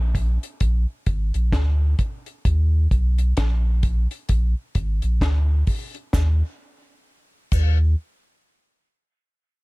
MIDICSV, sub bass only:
0, 0, Header, 1, 2, 480
1, 0, Start_track
1, 0, Tempo, 922651
1, 1274, Time_signature, 4, 2, 24, 8
1, 5011, End_track
2, 0, Start_track
2, 0, Title_t, "Sub bass"
2, 0, Program_c, 0, 38
2, 0, Note_on_c, 0, 34, 97
2, 199, Note_off_c, 0, 34, 0
2, 319, Note_on_c, 0, 34, 113
2, 446, Note_off_c, 0, 34, 0
2, 557, Note_on_c, 0, 32, 90
2, 685, Note_off_c, 0, 32, 0
2, 701, Note_on_c, 0, 34, 100
2, 787, Note_off_c, 0, 34, 0
2, 795, Note_on_c, 0, 38, 99
2, 1014, Note_off_c, 0, 38, 0
2, 1278, Note_on_c, 0, 39, 107
2, 1495, Note_off_c, 0, 39, 0
2, 1516, Note_on_c, 0, 35, 101
2, 1734, Note_off_c, 0, 35, 0
2, 1759, Note_on_c, 0, 34, 109
2, 2118, Note_off_c, 0, 34, 0
2, 2236, Note_on_c, 0, 34, 113
2, 2364, Note_off_c, 0, 34, 0
2, 2476, Note_on_c, 0, 32, 90
2, 2604, Note_off_c, 0, 32, 0
2, 2619, Note_on_c, 0, 34, 95
2, 2706, Note_off_c, 0, 34, 0
2, 2713, Note_on_c, 0, 38, 92
2, 2932, Note_off_c, 0, 38, 0
2, 3192, Note_on_c, 0, 39, 98
2, 3344, Note_off_c, 0, 39, 0
2, 3913, Note_on_c, 0, 39, 108
2, 4136, Note_off_c, 0, 39, 0
2, 5011, End_track
0, 0, End_of_file